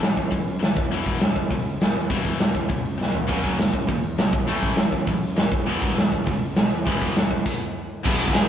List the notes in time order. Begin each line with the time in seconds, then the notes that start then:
0.01 A1 A2 E3, snare, open hi-hat
0.17 A1, kick, open hi-hat
0.31 F#2 A2 E3, kick, open hi-hat
0.48 open hi-hat
0.59 D#2 A2 E3, snare, open hi-hat
0.77 E1, kick, open hi-hat
0.91 E1 E2 B2 E3, open hi-hat
1.06 E1, kick, open hi-hat
1.21 E1 E2 B2, snare, open hi-hat
1.36 E1, kick, open hi-hat
1.50 C#2 E2 B2, kick, open hi-hat
1.66 open hi-hat
1.80 B1 E2 B2, snare, open hi-hat
1.95 E2, open hi-hat
2.10 E1 E2 B2 E3, kick, open hi-hat
2.25 E1, kick, open hi-hat
2.40 E1 E2 B2, snare, open hi-hat
2.55 E1, kick, open hi-hat
2.69 C#2 E2 B2, kick, open hi-hat
2.85 open hi-hat
2.98 B1 E2 B2, snare
3.14 E2, floor tom
3.27 F#1 F#2 C#3 F#3 A#3 C#4, kick, open hi-hat
3.44 F#1, kick, open hi-hat
3.57 F#1 F#2 C#3 F#3 A#3, snare, open hi-hat
3.73 F#1, kick, open hi-hat
3.87 E2 F#2 C#3 F#3 A#3, kick, open hi-hat
4.04 open hi-hat
4.18 C#2 F#2 C#3 F#3 A#3, snare, open hi-hat
4.33 A1, kick, open hi-hat
4.47 A1 A2 E3 A3, open hi-hat
4.62 A1, kick, open hi-hat
4.76 A1 A2 E3, snare, open hi-hat
4.92 A1, kick, open hi-hat
5.07 F#2 A2 E3, kick, open hi-hat
5.22 open hi-hat
5.36 E1 A2 E3, snare, open hi-hat
5.51 E1, kick, open hi-hat
5.66 E1 E2 B2 E3 G#3 B3, open hi-hat
5.82 E1, kick, open hi-hat
5.96 E1 E2 B2 E3 G#3, snare, open hi-hat
6.12 E1, kick, open hi-hat
6.26 C#2 E2 B2 E3 G#3, kick, open hi-hat
6.42 open hi-hat
6.56 B1 E2 B2 E3 G#3, snare, open hi-hat
6.72 E2, open hi-hat
6.85 E1 E2 B2 E3 G#3 B3, kick, open hi-hat
7.01 E1, kick, open hi-hat
7.16 E1 E2 B2 E3 G#3, snare, open hi-hat
7.31 E1, kick, open hi-hat
7.46 kick, crash
8.03 E1 E2 B2 E3 G#3 B3 E4, kick, crash
8.20 E1
8.28 kick
8.33 E1 G#4 G#5, snare, crash